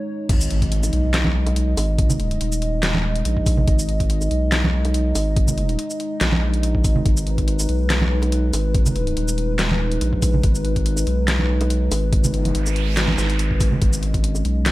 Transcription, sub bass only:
0.29 G#1
0.93 B1
1.77 G#1
2.41 D#1
3.25 A#1
3.68 G#1
4.31 B1
5.15 G#1
6.21 A#1
6.84 G#1
7.06 G#1
7.69 B1
8.53 G#1
9.17 D#1
10.01 A#1
10.44 G#1
11.07 B1
11.91 G#1
12.35 G1
12.55 G#1
13.18 G#1
13.82 G#1
14.45 B1

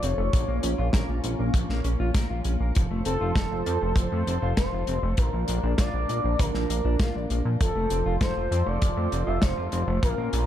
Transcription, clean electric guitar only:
0.03 C4
0.18 A3
0.33 F3
0.48 A#3
0.63 C#4
0.78 F4
0.94 A#4
1.09 F4
1.24 C#4
1.39 A#3
1.54 F3
1.69 A#3
1.85 C#4
2.00 F4
2.15 A#4
2.30 F4
2.45 C#4
2.60 A#3
2.76 F3
2.91 A3
3.06 C4
3.21 F4
3.36 A4
3.51 F4
3.66 C4
3.82 A3
3.97 F3
4.12 A3
4.27 C4
4.42 F4
4.57 A4
4.72 F4
4.88 C4
5.03 A3
5.18 D3
5.33 F3
5.48 A#3
5.63 D4
5.79 F4
5.94 D4
6.09 A#3
6.24 F3
6.39 D3
6.54 F3
6.70 A#3
6.85 D4
7.00 F4
7.15 D4
7.30 A#3
7.45 F3
7.60 F3
7.76 A3
7.91 C4
8.06 F4
8.21 A4
8.36 F4
8.51 C4
8.67 A3
8.82 F3
8.97 A3
9.12 C4
9.27 F4
9.42 A4
9.58 F4
9.73 C4
9.88 A3
10.03 F3
10.18 A#3
10.33 C#4

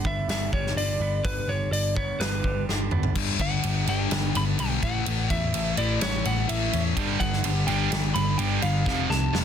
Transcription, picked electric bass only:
0.05 G1
0.28 G1
0.53 G1
0.76 G1
1.00 G1
1.25 G1
1.48 G1
1.71 G1
2.20 G1
2.44 G1
2.69 G1
2.92 G1
3.16 G1
3.39 G1
3.64 G1
3.87 G1
4.12 G1
4.36 G1
4.59 B1
4.82 A1
5.07 A1
5.30 E2
5.54 A1
5.78 A1
6.02 A1
6.26 A1
6.50 A1
6.74 E2
6.97 G1
7.20 G1
7.44 G1
7.68 G1
8.16 G1
8.39 G1
8.63 G1
8.86 F1
9.10 C2
9.34 F1

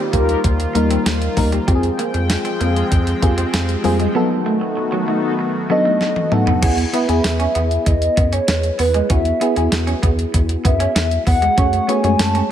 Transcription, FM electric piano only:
Already playing: G3 A#3 D#4 G4 A#4 C5
0.75 G3 A#3 D#4 A#4
1.37 G3 A#3 D#4 A#4
1.68 C4 F4 G4
1.75 G#4
3.22 C4 F4 G4 G#4
3.84 G3 C4 F4 G#4
4.15 F#3 B3 D#4 A4
5.70 F#3 B3 D4 A4
5.77 D#4
6.31 F#3 B3 D#4 A4
6.62 B3 E4 G#4
6.93 B3 E4 B4
7.08 B3 E4 G#4
9.10 B3 E4 F#4
9.41 B3 E4 G#4
9.56 B3 E4 G#4
11.57 A3 C#4 F#4 G#4 C#5
11.88 A3 C#4 F#4 G#4 C#5
12.03 G#3 A3 C#4 F#4 C#5

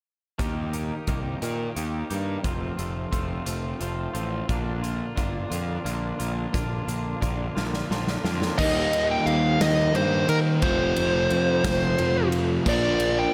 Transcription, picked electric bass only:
0.40 D#2
1.08 C2
1.42 A#2
1.77 D#2
2.11 G2
2.45 F1
2.79 F1
3.13 F1
3.46 F1
3.81 F1
4.15 A1
4.49 A#1
5.18 G1
5.51 F2
5.85 A#1
6.20 A#1
6.54 A#1
6.88 A#1
7.22 A#1
7.57 A#1
7.90 A#1
8.24 F2
8.59 D#2
9.26 D#2
9.61 D#2
9.95 G2
10.29 D#3
10.63 F1
10.98 F1
11.31 F2
11.64 F1
12.00 F2
12.67 A#1

